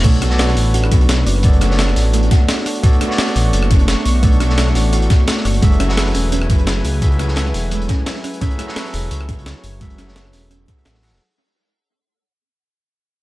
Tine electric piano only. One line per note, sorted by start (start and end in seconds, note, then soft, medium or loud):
0.03 0.28 B3 medium
0.03 0.29 F#4 medium
0.03 0.29 A4 medium
0.03 0.29 C#5 medium
0.03 0.30 D5 loud
0.29 1.41 B3 loud
0.29 1.41 F#4 medium
0.29 1.42 A4 medium
0.29 1.43 C#5 medium
0.33 1.43 D5 loud
1.43 1.67 B3 medium
1.43 1.68 F#4 medium
1.43 1.68 A4 medium
1.43 1.69 C#5 medium
1.43 1.69 D5 medium
1.69 2.80 B3 medium
1.69 2.81 F#4 medium
1.69 2.82 A4 medium
1.69 2.82 C#5 medium
1.73 2.83 D5 medium
2.82 3.07 B3 loud
2.82 3.08 F#4 medium
2.82 3.08 A4 medium
2.82 3.08 C#5 medium
2.82 3.09 D5 loud
3.08 4.20 B3 loud
3.08 4.21 F#4 medium
3.08 4.21 A4 medium
3.08 4.22 C#5 medium
3.12 4.22 D5 loud
4.22 4.46 B3 medium
4.22 4.47 F#4 medium
4.22 4.48 A4 medium
4.22 4.48 C#5 medium
4.22 4.48 D5 medium
4.48 5.60 B3 medium
4.48 5.60 F#4 medium
4.48 5.61 A4 medium
4.48 5.61 C#5 medium
4.52 5.62 D5 medium
5.61 5.86 F#3 medium
5.61 5.87 F#4 medium
5.61 5.87 G#4 medium
5.61 5.87 A4 medium
5.61 5.87 B4 medium
5.61 5.88 E5 loud
5.87 6.99 F#3 loud
5.87 7.00 F#4 medium
5.87 7.00 G#4 medium
5.87 7.00 A4 medium
5.87 7.01 B4 medium
5.91 7.01 F#5 loud
7.01 7.26 F#3 medium
7.01 7.26 F#4 medium
7.01 7.27 G#4 medium
7.01 7.27 A4 medium
7.01 7.27 B4 medium
7.01 7.27 E5 medium
7.27 8.39 F#3 medium
7.27 8.39 F#4 medium
7.27 8.40 G#4 medium
7.27 8.40 A4 medium
7.27 8.40 B4 medium
7.31 8.41 C#5 medium
8.40 8.65 F#3 loud
8.40 8.66 F#4 medium
8.40 8.66 G#4 medium
8.40 8.66 A4 medium
8.40 8.66 B4 medium
8.40 8.67 E5 loud
8.66 9.78 F#3 loud
8.66 9.79 F#4 medium
8.66 9.79 G#4 medium
8.66 9.79 A4 medium
8.66 9.80 B4 loud
8.71 9.80 F#5 loud
9.80 10.05 F#3 medium
9.80 10.05 F#4 medium
9.80 10.06 G#4 medium
9.80 10.06 A4 medium
9.80 10.06 B4 medium
9.80 10.06 E5 loud
10.06 10.66 F#3 medium
10.06 10.66 F#4 medium
10.06 10.67 G#4 medium
10.06 10.67 A4 medium
10.06 10.67 B4 medium
10.10 10.68 C#5 medium
10.67 10.75 F#3 medium
10.67 10.75 F#4 medium
10.67 10.75 G#4 medium
10.67 10.76 A4 medium
10.67 10.76 B4 medium
10.67 10.76 F#5 medium
10.77 11.01 F#3 medium
10.77 11.01 F#4 medium
10.77 11.01 G#4 medium
10.77 11.01 A4 medium
10.77 11.02 B4 medium
10.77 11.02 E5 medium
11.02 11.18 F#3 loud
11.02 11.18 F#4 medium
11.02 11.19 G#4 medium
11.02 11.19 A4 medium
11.02 11.19 B4 medium
11.02 11.19 F#5 loud